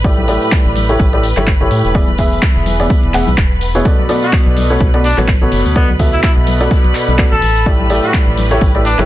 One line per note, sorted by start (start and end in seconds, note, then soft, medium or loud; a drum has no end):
0.00 0.38 A1 medium
0.00 3.84 B4 medium
0.00 3.84 B5 medium
0.04 0.23 A2 medium
0.04 0.23 A3 medium
0.04 0.23 E4 medium
0.04 0.23 G4 medium
0.04 0.23 D5 loud
0.04 kick loud
0.04 closed hi-hat medium
0.04 tambourine soft
0.04 shaker soft
0.18 high conga medium
0.28 0.86 A2 medium
0.28 0.86 A3 medium
0.28 0.86 E4 medium
0.28 0.86 G4 medium
0.28 0.86 D5 loud
0.28 open hi-hat loud
0.28 tambourine medium
0.28 shaker medium
0.42 tambourine medium
0.42 shaker soft
0.52 kick loud
0.52 clap loud
0.52 closed hi-hat medium
0.52 shaker soft
0.65 0.97 A1 medium
0.76 open hi-hat loud
0.76 tambourine medium
0.76 high conga medium
0.76 shaker medium
0.89 1.06 A2 medium
0.89 1.06 A3 medium
0.89 1.06 E4 medium
0.89 1.06 G4 medium
0.89 1.06 C#5 medium
0.89 closed hi-hat soft
0.89 tambourine medium
0.89 shaker soft
1.00 1.34 A1 loud
1.00 kick loud
1.00 closed hi-hat medium
1.00 tambourine soft
1.00 shaker soft
1.13 1.23 A2 medium
1.13 1.23 A3 medium
1.13 1.23 E4 medium
1.13 1.23 G4 medium
1.13 1.22 D5 medium
1.13 closed hi-hat soft
1.23 open hi-hat loud
1.23 tambourine medium
1.23 shaker medium
1.37 1.57 G1 loud
1.37 1.46 A2 medium
1.37 1.46 A3 medium
1.37 1.46 E4 medium
1.37 1.46 G4 medium
1.37 1.46 C#5 medium
1.37 clap soft
1.37 tambourine medium
1.37 high conga medium
1.37 shaker soft
1.47 kick loud
1.47 clap loud
1.47 closed hi-hat medium
1.47 tambourine soft
1.47 shaker soft
1.61 1.69 G1 loud
1.61 1.92 A2 medium
1.61 1.92 A3 medium
1.61 1.92 E4 medium
1.61 1.92 G4 medium
1.61 1.92 C#5 loud
1.71 1.82 A2 loud
1.71 open hi-hat loud
1.71 tambourine medium
1.71 shaker medium
1.84 2.40 E1 medium
1.84 tambourine medium
1.84 shaker soft
1.95 2.07 E3 medium
1.95 2.07 B3 medium
1.95 2.07 E4 medium
1.95 2.07 G#4 medium
1.95 2.07 D5 medium
1.95 kick loud
1.95 closed hi-hat medium
1.95 tambourine soft
1.95 shaker soft
2.08 closed hi-hat soft
2.08 high conga medium
2.18 2.76 E3 medium
2.18 2.76 B3 medium
2.18 2.76 E4 medium
2.18 2.76 G#4 medium
2.18 2.76 E5 medium
2.18 kick medium
2.18 open hi-hat loud
2.18 tambourine medium
2.18 shaker medium
2.32 tambourine soft
2.32 shaker soft
2.42 kick loud
2.42 clap loud
2.42 closed hi-hat medium
2.42 shaker soft
2.56 2.88 E1 medium
2.66 open hi-hat loud
2.66 tambourine medium
2.66 high conga medium
2.66 shaker medium
2.80 3.12 E3 medium
2.80 3.12 B3 medium
2.80 3.12 E4 medium
2.80 3.12 G#4 medium
2.80 3.12 D5 medium
2.80 closed hi-hat soft
2.80 tambourine soft
2.80 shaker soft
2.90 kick loud
2.90 closed hi-hat medium
2.90 tambourine soft
2.90 shaker soft
3.03 3.12 E1 medium
3.03 closed hi-hat soft
3.14 3.25 E1 medium
3.14 3.26 E3 medium
3.14 3.26 B3 medium
3.14 3.26 E4 medium
3.14 3.26 G#4 medium
3.14 3.26 F#5 medium
3.14 clap soft
3.14 open hi-hat loud
3.14 tambourine medium
3.14 shaker medium
3.27 3.36 B1 medium
3.27 closed hi-hat soft
3.27 tambourine medium
3.27 high conga medium
3.27 shaker soft
3.38 3.83 E1 medium
3.38 kick loud
3.38 clap loud
3.38 closed hi-hat medium
3.38 shaker soft
3.61 open hi-hat loud
3.61 tambourine medium
3.61 shaker medium
3.75 3.84 B2 medium
3.75 3.84 B3 medium
3.75 3.84 E4 medium
3.75 3.84 G#4 medium
3.75 3.84 C#5 medium
3.75 closed hi-hat soft
3.75 tambourine medium
3.75 shaker soft
3.85 4.03 B2 medium
3.85 4.03 B3 medium
3.85 4.03 A4 medium
3.85 9.05 B4 medium
3.85 4.03 D5 medium
3.85 9.05 B5 medium
3.85 kick loud
3.85 closed hi-hat medium
3.85 tambourine soft
3.85 shaker soft
3.99 high conga medium
4.09 4.67 B2 medium
4.09 4.67 B3 medium
4.09 4.67 F#4 medium
4.09 4.67 A4 medium
4.09 4.67 D5 medium
4.09 open hi-hat loud
4.09 tambourine medium
4.09 shaker medium
4.23 4.33 F#4 medium
4.23 tambourine medium
4.23 shaker soft
4.33 kick loud
4.33 clap loud
4.33 closed hi-hat medium
4.33 shaker soft
4.46 4.78 B1 medium
4.57 open hi-hat loud
4.57 tambourine loud
4.57 high conga medium
4.57 shaker medium
4.70 4.87 B2 medium
4.70 4.87 B3 medium
4.70 4.87 F#4 medium
4.70 4.87 A4 medium
4.70 4.87 C#5 loud
4.70 closed hi-hat soft
4.70 tambourine medium
4.70 shaker soft
4.81 5.14 B1 medium
4.81 kick loud
4.81 closed hi-hat medium
4.81 tambourine soft
4.81 shaker soft
4.94 5.03 B2 medium
4.94 5.03 B3 medium
4.94 5.03 F#4 medium
4.94 5.03 A4 medium
4.94 5.03 D5 loud
4.94 closed hi-hat medium
5.04 5.18 D4 medium
5.04 open hi-hat loud
5.04 tambourine medium
5.04 shaker medium
5.18 5.37 A1 loud
5.18 5.27 B2 medium
5.18 5.27 B3 medium
5.18 5.27 F#4 medium
5.18 5.27 A4 medium
5.18 5.27 C#5 loud
5.18 clap soft
5.18 tambourine soft
5.18 high conga medium
5.18 shaker soft
5.28 kick loud
5.28 clap loud
5.28 closed hi-hat medium
5.28 shaker soft
5.42 5.50 A1 loud
5.42 5.73 B2 medium
5.42 5.73 B3 medium
5.42 5.73 F#4 medium
5.42 5.73 A4 medium
5.42 5.73 C#5 loud
5.52 5.63 F#1 loud
5.52 open hi-hat loud
5.52 tambourine medium
5.52 shaker medium
5.65 6.21 D2 medium
5.65 tambourine medium
5.65 shaker soft
5.76 5.88 B2 medium
5.76 5.88 B3 medium
5.76 5.89 B3 medium
5.76 5.88 F#4 medium
5.76 5.88 A4 medium
5.76 5.88 D5 medium
5.76 kick loud
5.76 closed hi-hat medium
5.76 tambourine soft
5.76 shaker soft
5.89 high conga medium
5.99 6.57 B2 medium
5.99 6.57 B3 medium
5.99 6.57 F#4 medium
5.99 6.57 A4 medium
5.99 6.57 E5 medium
5.99 kick medium
5.99 open hi-hat loud
5.99 tambourine medium
5.99 shaker medium
6.13 6.20 E4 medium
6.13 tambourine medium
6.13 shaker soft
6.23 6.32 E4 medium
6.23 kick loud
6.23 clap loud
6.23 closed hi-hat medium
6.23 shaker soft
6.37 6.68 B1 medium
6.47 open hi-hat loud
6.47 tambourine medium
6.47 high conga medium
6.47 shaker medium
6.61 7.16 B2 medium
6.61 7.16 B3 medium
6.61 7.16 F#4 medium
6.61 7.16 A4 medium
6.61 7.16 D5 medium
6.61 closed hi-hat soft
6.61 tambourine soft
6.61 shaker soft
6.71 kick loud
6.71 closed hi-hat medium
6.71 tambourine soft
6.71 shaker soft
6.84 6.93 B1 medium
6.84 closed hi-hat soft
6.95 clap soft
6.95 open hi-hat medium
6.95 tambourine medium
6.95 shaker medium
7.08 7.28 B1 medium
7.08 tambourine soft
7.08 high conga medium
7.08 shaker soft
7.18 7.31 B2 medium
7.18 7.31 B3 medium
7.18 7.31 F#4 medium
7.18 7.31 A4 medium
7.18 7.31 D5 loud
7.18 kick loud
7.18 clap loud
7.18 closed hi-hat medium
7.18 tambourine soft
7.18 shaker soft
7.32 7.41 A1 loud
7.32 7.72 A4 medium
7.42 8.00 A1 medium
7.42 open hi-hat loud
7.42 tambourine medium
7.42 shaker medium
7.56 tambourine soft
7.56 shaker soft
7.66 7.84 A2 medium
7.66 7.84 A3 medium
7.66 7.84 E4 medium
7.66 7.84 G4 medium
7.66 7.84 D5 medium
7.66 kick loud
7.66 closed hi-hat medium
7.66 tambourine soft
7.66 shaker soft
7.80 high conga medium
7.90 8.48 A2 medium
7.90 8.48 A3 medium
7.90 8.48 E4 medium
7.90 8.48 G4 medium
7.90 8.48 D5 loud
7.90 open hi-hat loud
7.90 tambourine medium
7.90 shaker medium
8.03 8.14 F#4 medium
8.03 tambourine soft
8.03 shaker soft
8.14 kick loud
8.14 clap loud
8.14 closed hi-hat medium
8.14 shaker soft
8.27 8.59 A1 loud
8.37 open hi-hat loud
8.37 tambourine medium
8.37 high conga medium
8.37 shaker medium
8.51 8.68 A2 medium
8.51 8.68 A3 medium
8.51 8.68 E4 medium
8.51 8.68 G4 medium
8.51 8.68 C#5 loud
8.51 closed hi-hat medium
8.51 tambourine soft
8.51 shaker soft
8.61 8.95 A1 medium
8.61 kick loud
8.61 closed hi-hat medium
8.61 tambourine soft
8.61 shaker soft
8.75 8.84 A2 medium
8.75 8.84 A3 medium
8.75 8.84 E4 medium
8.75 8.84 G4 medium
8.75 8.84 D5 medium
8.75 closed hi-hat medium
8.85 8.99 D4 medium
8.85 open hi-hat medium
8.85 tambourine medium
8.85 shaker medium
8.99 9.05 G1 loud
8.99 9.05 A2 medium
8.99 9.05 A3 medium
8.99 9.05 E4 medium
8.99 9.05 G4 medium
8.99 9.05 C#5 loud
8.99 clap soft
8.99 tambourine medium
8.99 high conga medium
8.99 shaker soft